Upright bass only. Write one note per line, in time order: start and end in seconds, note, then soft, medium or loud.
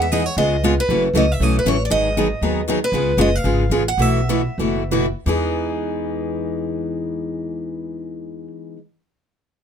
0.00 0.27 E2 medium
0.37 0.78 C#2 medium
0.89 1.09 F#1 medium
1.14 1.35 C#2 medium
1.40 1.61 B1 medium
1.65 1.87 A1 medium
1.91 2.31 G#1 medium
2.41 2.82 D#2 medium
2.92 3.13 C#2 medium
3.17 3.40 F#1 medium
3.44 3.67 G#1 medium
3.70 3.94 A1 medium
3.98 4.46 B1 medium
4.58 5.12 F#1 medium
5.26 8.47 E2 medium